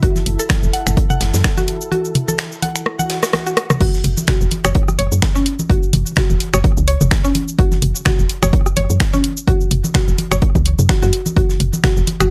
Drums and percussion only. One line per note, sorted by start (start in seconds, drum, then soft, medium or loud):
0.03 kick loud
0.03 closed hi-hat medium
0.16 snare soft
0.16 high conga soft
0.16 shaker soft
0.26 closed hi-hat medium
0.39 shaker medium
0.49 finger snap medium
0.49 kick loud
0.49 snare loud
0.49 closed hi-hat medium
0.49 high conga soft
0.63 shaker soft
0.73 closed hi-hat medium
0.86 finger snap medium
0.86 high conga soft
0.86 shaker soft
0.97 kick loud
0.97 closed hi-hat medium
1.10 mid tom medium
1.10 shaker soft
1.21 snare loud
1.21 closed hi-hat medium
1.21 high conga soft
1.34 snare loud
1.34 closed hi-hat medium
1.34 shaker medium
1.44 finger snap medium
1.44 kick loud
1.44 snare loud
1.44 closed hi-hat medium
1.57 snare soft
1.57 high conga soft
1.57 shaker soft
1.68 closed hi-hat medium
1.81 shaker soft
1.92 closed hi-hat medium
1.92 high conga soft
2.05 shaker soft
2.15 closed hi-hat medium
2.15 mid tom medium
2.28 high conga soft
2.28 shaker medium
2.38 finger snap medium
2.38 snare loud
2.38 closed hi-hat medium
2.52 shaker soft
2.62 closed hi-hat medium
2.62 high conga soft
2.76 finger snap medium
2.76 shaker medium
2.86 cross-stick medium
2.99 high conga soft
2.99 shaker soft
3.10 snare loud
3.10 closed hi-hat medium
3.23 cross-stick medium
3.23 snare loud
3.23 closed hi-hat medium
3.23 shaker medium
3.33 cross-stick medium
3.33 snare loud
3.33 closed hi-hat medium
3.33 high conga soft
3.47 shaker soft
3.57 cross-stick loud
3.57 closed hi-hat medium
3.70 cross-stick medium
3.70 mid tom medium
3.70 high conga soft
3.70 shaker medium
3.81 kick loud
3.81 closed hi-hat medium
3.81 crash loud
3.81 high conga soft
3.94 snare soft
3.94 shaker soft
4.04 closed hi-hat medium
4.04 mid tom medium
4.17 high conga soft
4.17 shaker medium
4.27 finger snap medium
4.27 kick loud
4.27 snare loud
4.27 closed hi-hat medium
4.27 mid tom medium
4.41 shaker soft
4.51 closed hi-hat medium
4.51 high conga soft
4.65 finger snap medium
4.65 cross-stick medium
4.65 shaker medium
4.75 kick loud
4.75 closed hi-hat medium
4.88 cross-stick medium
4.88 high conga soft
4.88 shaker soft
4.99 closed hi-hat medium
5.12 shaker medium
5.22 finger snap medium
5.22 kick loud
5.22 snare loud
5.22 closed hi-hat medium
5.22 high conga soft
5.36 snare soft
5.36 shaker soft
5.46 closed hi-hat medium
5.59 high conga soft
5.59 shaker medium
5.70 kick loud
5.70 closed hi-hat medium
5.83 shaker soft
5.93 closed hi-hat loud
5.93 closed hi-hat medium
5.93 mid tom medium
5.93 high conga soft
6.06 shaker medium
6.16 finger snap loud
6.16 kick loud
6.16 snare loud
6.16 closed hi-hat medium
6.16 mid tom medium
6.30 high conga soft
6.30 shaker soft
6.40 closed hi-hat medium
6.54 finger snap medium
6.54 cross-stick medium
6.54 shaker medium
6.64 kick loud
6.64 closed hi-hat medium
6.64 high conga soft
6.77 shaker soft
6.88 closed hi-hat loud
6.88 closed hi-hat medium
7.01 mid tom medium
7.01 high conga soft
7.01 shaker medium
7.11 finger snap loud
7.11 kick loud
7.11 snare loud
7.11 closed hi-hat medium
7.24 snare soft
7.24 shaker soft
7.35 closed hi-hat medium
7.35 high conga soft
7.48 shaker medium
7.59 kick loud
7.59 closed hi-hat medium
7.72 snare soft
7.72 high conga soft
7.72 shaker soft
7.82 closed hi-hat medium
7.82 mid tom medium
7.95 shaker medium
8.05 finger snap medium
8.05 kick loud
8.05 snare loud
8.05 closed hi-hat medium
8.05 mid tom medium
8.05 high conga soft
8.19 shaker soft
8.29 closed hi-hat medium
8.43 finger snap medium
8.43 cross-stick medium
8.43 high conga soft
8.43 shaker medium
8.53 kick loud
8.53 closed hi-hat medium
8.66 cross-stick medium
8.66 shaker soft
8.76 closed hi-hat medium
8.76 high conga soft
8.90 shaker medium
9.00 finger snap medium
9.00 kick loud
9.00 snare loud
9.00 closed hi-hat loud
9.13 snare soft
9.13 high conga soft
9.13 shaker soft
9.24 closed hi-hat medium
9.37 shaker soft
9.47 kick loud
9.47 closed hi-hat medium
9.47 high conga soft
9.61 shaker soft
9.71 closed hi-hat medium
9.71 mid tom medium
9.84 high conga soft
9.84 shaker soft
9.94 finger snap medium
9.94 kick loud
9.94 snare loud
9.94 closed hi-hat medium
9.94 mid tom medium
10.08 shaker soft
10.18 closed hi-hat medium
10.18 high conga soft
10.31 finger snap medium
10.31 cross-stick medium
10.31 shaker soft
10.42 kick loud
10.42 closed hi-hat medium
10.55 kick medium
10.55 high conga soft
10.55 shaker soft
10.65 closed hi-hat medium
10.79 mid tom medium
10.79 shaker soft
10.89 finger snap medium
10.89 kick loud
10.89 snare loud
10.89 closed hi-hat loud
10.89 high conga soft
11.02 snare soft
11.02 shaker soft
11.13 closed hi-hat medium
11.26 high conga soft
11.26 shaker soft
11.36 kick loud
11.36 closed hi-hat medium
11.36 high conga soft
11.49 snare soft
11.49 shaker soft
11.60 closed hi-hat medium
11.60 mid tom medium
11.73 high conga soft
11.73 shaker medium
11.84 finger snap medium
11.84 kick loud
11.84 snare loud
11.84 closed hi-hat medium
11.84 mid tom medium
11.97 shaker soft
12.07 closed hi-hat medium
12.07 high conga soft
12.20 finger snap medium
12.20 cross-stick medium
12.20 shaker soft